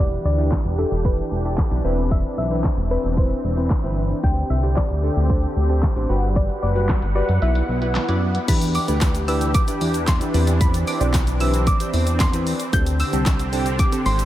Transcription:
0.00 E1 E3 D4 E4 G4 D5
0.12 closed hi-hat
0.25 D2 D5
0.38 D4 E4 G4, closed hi-hat
0.52 kick, snare, clap, closed hi-hat
0.65 E1, closed hi-hat
0.78 D4 E4 G4 A4
0.91 E1, closed hi-hat
1.05 D4 E4 G4 B4, kick, closed hi-hat
1.18 closed hi-hat
1.31 E1
1.45 D4 E4 G4, closed hi-hat
1.58 kick, snare, clap, closed hi-hat
1.71 B1 D4 E4 G4, closed hi-hat
1.84 E1 C4 E4 B4
1.98 closed hi-hat
2.11 E5, kick, closed hi-hat
2.25 closed hi-hat
2.38 B1 E5
2.51 C4 E4 B4, closed hi-hat
2.64 kick, snare, clap, closed hi-hat
2.77 E1, closed hi-hat
2.90 C4 E4 B4
3.04 E1, closed hi-hat
3.17 C4 E4 B4 C5, kick, closed hi-hat
3.31 closed hi-hat
3.44 E1
3.57 C4 E4 B4, closed hi-hat
3.70 kick, snare, clap, closed hi-hat
3.83 G1 C4 E4 B4, closed hi-hat
4.10 closed hi-hat
4.23 D2 D3 C4 D4 G4 C5 G5, kick, closed hi-hat
4.37 closed hi-hat
4.50 C2 E5
4.63 D4 G4 C5, closed hi-hat
4.76 D5, kick, snare, clap, closed hi-hat
4.90 D2, closed hi-hat
5.03 D4 G4 A4
5.16 D2, closed hi-hat
5.29 D4 G4 A4 C5, kick, closed hi-hat
5.43 closed hi-hat
5.56 D2
5.69 D4 G4 C5, closed hi-hat
5.83 kick, snare, clap, closed hi-hat
5.96 A1 D4 G4 C5, closed hi-hat
6.09 G1 G3 F#4 G4 B4 F#5
6.22 closed hi-hat
6.36 D5, kick, closed hi-hat
6.49 closed hi-hat
6.63 F#1 D5
6.75 F#4 G4 B4, closed hi-hat
6.89 kick, snare, clap, closed hi-hat
7.02 G1, closed hi-hat
7.15 F#4 G4 B4 D5
7.29 F#2, closed hi-hat
7.42 B1 B3 E4 F#4 B4 E5, closed hi-hat
7.55 closed hi-hat
7.69 B1
7.82 E4 F#4 B4, closed hi-hat
7.95 snare, clap, closed hi-hat
8.08 F#2 E4 F#4 D5, closed hi-hat
8.35 closed hi-hat
8.48 E2 E3 D4 E4 G4 B4 B5, kick, closed hi-hat, crash, shaker
8.62 closed hi-hat, shaker
8.75 D6, open hi-hat, shaker
8.88 D2 D4 E4 G4 B4, closed hi-hat, shaker
9.01 kick, snare, clap, closed hi-hat, shaker
9.15 closed hi-hat, shaker
9.28 D4 E4 G4 B4 E6, open hi-hat, shaker
9.41 closed hi-hat, shaker
9.54 D6, kick, closed hi-hat, shaker
9.68 D4 E4 G4 B4, closed hi-hat, shaker
9.81 E2, open hi-hat, shaker
9.94 closed hi-hat, shaker
10.07 C6, kick, snare, clap, closed hi-hat, shaker
10.20 D4 E4 G4 B4, closed hi-hat, shaker
10.34 E2 C4 E4 G4 B4, open hi-hat, shaker
10.47 closed hi-hat, shaker
10.61 B5, kick, closed hi-hat, shaker
10.74 closed hi-hat, shaker
10.87 D6, open hi-hat, shaker
11.00 B1 C4 E4 G4 D5, closed hi-hat, shaker
11.14 kick, snare, clap, closed hi-hat, shaker
11.27 closed hi-hat, shaker
11.40 C4 E4 G4 B4 E6, open hi-hat, shaker
11.54 closed hi-hat, shaker
11.67 D6, kick, closed hi-hat, shaker
11.80 C4 E4 G4 C5, closed hi-hat, shaker
11.94 E2, open hi-hat, shaker
12.07 closed hi-hat, shaker
12.20 C6, kick, snare, clap, closed hi-hat, shaker
12.33 C4 E4 G4 B4, closed hi-hat, shaker
12.47 open hi-hat, shaker
12.60 closed hi-hat, shaker
12.73 D2 D3 C4 D4 G4 A4 G6, kick, closed hi-hat, shaker
12.87 closed hi-hat, shaker
13.00 E6, open hi-hat, shaker
13.13 C2 C4 D4 G4 A4, closed hi-hat, shaker
13.26 kick, snare, clap, closed hi-hat, shaker
13.39 closed hi-hat, shaker
13.52 C4 D4 G4 A4, open hi-hat, shaker
13.66 closed hi-hat, shaker
13.79 D6, kick, closed hi-hat, shaker
13.92 C4 D4 G4 A4, closed hi-hat, shaker
14.06 G#1 C6, open hi-hat, shaker
14.19 closed hi-hat, shaker

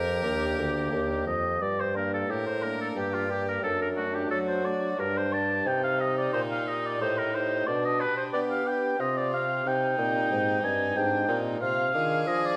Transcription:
Already playing: F2 G4 A#4
0.23 D#2 A#3 D4 G4
0.58 D2
0.91 D#2 A#3 D4 G4
1.26 F2 D#5
1.61 G2 D5
1.80 C5
1.94 A#3 D4 A#4
2.14 A4
2.28 A2 G4 A#4
2.46 C5
2.62 A#3 D4 A#4
2.81 A4
2.95 G2 G4
3.14 F4
3.30 A#3 D4 G4
3.48 A#4
3.63 F#2 D4 A4
3.81 A#4
3.96 A3 D4 F#4
4.15 G4
4.30 F#3 F#4 A4
4.48 C5
4.65 A3 D4 D5
4.98 G2 D4 A#4
5.17 C5
5.32 D4 G4 A5
5.65 C3 D#4 G5
5.83 F5
5.99 D#4 G4 D#5
6.17 D5
6.33 A#2 C5
6.51 F5
6.67 D#4 G4 D#5
6.85 D5
7.00 A2 C5
7.18 A#4
7.34 D#4 G4 C5
7.67 B2 D4 D5
7.85 D#5
8.00 D4 G4 B4
8.16 C5
8.33 B3 G4 D5
8.50 F5
8.66 D4 G4 G5
8.99 C3 F4 D#5
9.17 D5
9.32 C4 G4 F5
9.65 C3 D#4 G5
9.98 A#2 C4 D#4 G4
10.31 G#2
10.63 G2 C4 D#4 G4 G#5
10.95 G#2 D4 G5
11.27 A#2 C4 D#4 G4
11.61 C3 F4 F5
11.94 D#3 D4 F4 G#4
12.27 F3 D#5
12.45 D5

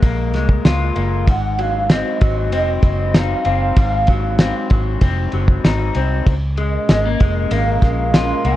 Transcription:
Already playing: G#3 F4
0.03 A#1 A#3, kick, ride
0.34 C2 G#3, snare, ride
0.49 kick
0.65 C#2 F4, snare, ride
0.96 F#1 A#3, ride
1.27 G#1 G#2 F#5, kick, ride
1.59 F#3 F5, ride
1.90 C4 D#5, snare, ride
2.21 G#1 F#3, kick, ride
2.52 F1 C4 D#5, ride
2.83 F#1 F#3 D#5, kick, ride
3.14 D#4 F5, snare, ride
3.45 F#1 C4 F5, ride
3.76 G#1 G#2, kick, ride
4.07 F#3, kick, ride
4.39 C4, snare, ride
4.70 G#1 F#3, kick, ride
5.01 F1 C4, kick, ride
5.32 F#1 F#3, ride
5.48 kick
5.64 G#1 D#4, snare, ride
5.95 C2 C4, ride
6.26 C#2 A#2 C#4 F4 A#4 D#5, kick, ride
6.57 G#3 D#5, ride
6.89 G#1 G#3, snare, ride
7.05 A#3
7.20 F1 G#3, kick, ride
7.51 G#1 A#3 F5, ride
7.82 A#1 G#3 F5, kick, snare, ride
8.14 F4, snare, ride
8.45 C2 A#3 F#5, ride
8.52 G#5

